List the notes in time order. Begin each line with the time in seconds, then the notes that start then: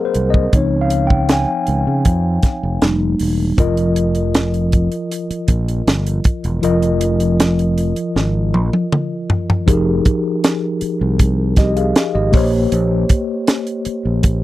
Already playing: F#3 A#3 C4 G#4 A#4 C5 D#5 F#5
0.05 C5
0.14 C2, closed hi-hat
0.30 D#5, kick
0.53 C#2 F3 C4 D#4 C#5, kick, closed hi-hat
0.81 F5
0.90 closed hi-hat
1.07 G5, kick
1.29 G#5, snare, closed hi-hat
1.67 C#2, closed hi-hat
1.87 C#3
2.05 F2, kick, closed hi-hat
2.43 kick, snare, closed hi-hat
2.63 F1
2.82 F1 G3 A#3 D#4, snare, closed hi-hat
3.19 E1, open hi-hat
3.57 F1 F3 F4 A#4 D#5, kick, closed hi-hat
3.77 closed hi-hat
3.96 closed hi-hat
4.15 closed hi-hat
4.34 snare, closed hi-hat
4.54 closed hi-hat
4.72 kick, closed hi-hat
4.92 closed hi-hat
5.11 closed hi-hat
5.30 muted fingered electric bass stroke, closed hi-hat
5.48 A#1, kick, closed hi-hat
5.68 closed hi-hat
5.87 G1, snare, closed hi-hat
6.07 closed hi-hat
6.24 kick, closed hi-hat
6.44 E1, closed hi-hat
6.62 F1 F3 F4 A#4 D#5, closed hi-hat
6.82 closed hi-hat
7.01 closed hi-hat
7.20 closed hi-hat
7.40 snare, closed hi-hat
7.59 closed hi-hat
7.78 closed hi-hat
7.96 closed hi-hat
8.16 G#1, snare
8.54 A#1, high tom
8.73 high tom
8.92 mid tom
9.30 floor tom
9.50 floor tom
9.66 F1 F3 D#4 G4 G#4 A#4, kick, closed hi-hat
10.05 kick, closed hi-hat
10.44 snare, closed hi-hat
10.81 muted fingered electric bass stroke, closed hi-hat
11.01 C2
11.19 kick, closed hi-hat
11.56 G4 D#5, kick, snare, closed hi-hat
11.77 G#4 F5, closed hi-hat
11.96 snare, closed hi-hat
12.15 G#1 G4 D#5
12.32 A#1 A#3 G4 C5 C#5, kick, open hi-hat
12.72 A#1, closed hi-hat
13.09 kick, closed hi-hat
13.47 snare, closed hi-hat
13.67 closed hi-hat
13.85 muted fingered electric bass stroke, closed hi-hat
14.05 A#1
14.23 kick, closed hi-hat